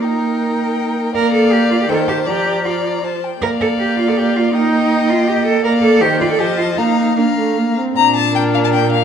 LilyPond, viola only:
\new Staff \with { instrumentName = "Viola" } { \time 3/4 \key bes \major \tempo 4 = 160 bes2. | bes2 ees4 | f2~ f8 r8 | bes2.~ |
bes2. | bes4 ees4 f4 | bes4 bes8 a8 bes8 c'8 | r4 bes'2 | }